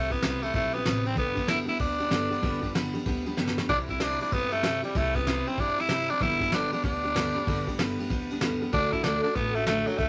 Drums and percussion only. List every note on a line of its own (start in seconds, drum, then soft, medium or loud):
0.11 kick medium
0.11 ride medium
0.22 snare loud
0.22 ride medium
0.43 ride medium
0.53 kick loud
0.53 ride medium
0.74 ride medium
0.85 snare loud
0.85 ride medium
1.06 ride medium
1.16 kick loud
1.16 ride medium
1.37 kick medium
1.37 ride medium
1.48 snare loud
1.48 ride medium
1.68 ride medium
1.79 kick loud
1.79 ride medium
2.00 ride medium
2.11 snare loud
2.11 ride medium
2.32 ride medium
2.43 kick loud
2.43 ride medium
2.63 kick medium
2.63 ride medium
2.75 snare loud
2.75 ride medium
2.94 ride medium
3.06 kick loud
3.06 ride medium
3.26 ride medium
3.37 snare medium
3.47 snare medium
3.58 snare loud
3.69 kick loud
3.69 ride medium
3.88 kick medium
3.88 ride medium
4.00 snare loud
4.00 ride medium
4.20 ride medium
4.31 kick loud
4.31 ride medium
4.51 ride medium
4.63 snare loud
4.63 ride medium
4.83 ride medium
4.95 kick loud
4.95 ride medium
5.15 kick medium
5.15 ride medium
5.27 snare loud
5.27 ride medium
5.47 ride medium
5.58 kick loud
5.58 ride medium
5.78 ride medium
5.89 snare loud
5.89 ride medium
6.09 ride medium
6.21 kick loud
6.21 ride medium
6.40 kick medium
6.40 ride medium
6.52 snare loud
6.52 ride medium
6.72 ride medium
6.84 kick loud
6.84 ride medium
7.04 ride medium
7.16 snare loud
7.16 ride medium
7.36 ride medium
7.47 kick loud
7.47 ride medium
7.67 kick medium
7.67 ride medium
7.79 snare loud
7.79 ride medium
8.00 ride medium
8.10 kick loud
8.10 ride medium
8.30 ride medium
8.41 snare loud
8.41 ride medium
8.61 ride medium
8.73 kick loud
8.73 ride medium
8.93 kick medium
8.93 ride medium
9.04 snare loud
9.04 ride medium
9.24 ride medium
9.35 kick loud
9.35 snare soft
9.35 ride medium
9.55 ride medium
9.66 snare loud
9.66 ride medium
9.86 ride medium
9.98 kick loud
9.98 ride medium